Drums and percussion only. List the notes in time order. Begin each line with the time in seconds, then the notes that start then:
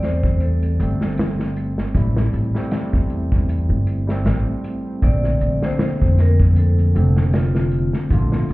0.03 snare, closed hi-hat
0.23 kick
0.40 closed hi-hat
0.63 closed hi-hat
0.80 closed hi-hat
1.01 snare
1.18 snare, closed hi-hat
1.39 snare
1.56 closed hi-hat
1.78 snare
1.95 kick, closed hi-hat
2.17 snare
2.33 closed hi-hat
2.55 snare
2.71 snare, closed hi-hat
2.93 kick
3.10 closed hi-hat
3.32 kick
3.49 closed hi-hat
3.87 closed hi-hat
4.09 snare
4.26 snare, closed hi-hat
4.64 closed hi-hat
5.02 kick, closed hi-hat
5.24 snare
5.41 closed hi-hat
5.62 snare
5.79 snare, closed hi-hat
6.02 kick
6.18 snare, closed hi-hat
6.40 kick
6.56 closed hi-hat
6.79 closed hi-hat
6.96 closed hi-hat
7.17 snare
7.33 snare, closed hi-hat
7.55 snare
7.71 closed hi-hat
7.93 snare
8.11 kick, closed hi-hat
8.32 snare
8.49 closed hi-hat